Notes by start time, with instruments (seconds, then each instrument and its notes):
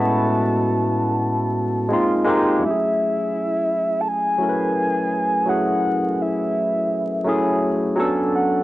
Already playing: tine electric piano A2 G#3 B3 C#4 E4 F#4, soft synth lead A5
1.89 tine electric piano G#3 A#3 C4 D#4
1.93 tine electric piano F4
2.24 tine electric piano G#3 A#3 C4 D#4
2.29 tine electric piano G4
2.59 tine electric piano F#3 A3 C#4 E4
2.63 tine electric piano G4, soft synth lead E5
2.70 tine electric piano G#4
4.01 soft synth lead A5
4.08 soft synth lead G#5
4.38 tine electric piano F#3 A3 C#4 E4
4.42 tine electric piano A#4
4.49 tine electric piano B4
5.46 tine electric piano F#3 A3 C#4 E4, soft synth lead F#5
5.50 tine electric piano G#4
6.22 soft synth lead E5
7.24 tine electric piano F#3 A3 C#4 E4
7.29 tine electric piano G#4
7.96 tine electric piano F#3 B3 C#4 D4
8.00 tine electric piano A4
8.35 soft synth lead F#5